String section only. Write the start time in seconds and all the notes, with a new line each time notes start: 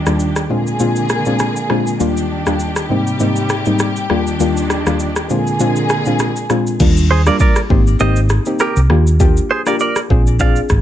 Already playing: D#3 D4 G4
0.50 D3 A#3 G#4
2.00 D#3 D4 G4
2.90 C3 G3
4.10 D#3 D4
5.30 D3 A#3 G#4